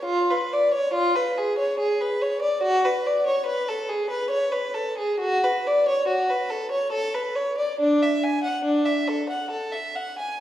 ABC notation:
X:1
M:3/4
L:1/16
Q:1/4=70
K:F#m
V:1 name="Violin"
^E B d c E B G c G B c d | F B d c B A G B c B A G | [K:Dlyd] F B d c F B A c A B c d | D e g f D e A f A e f g |]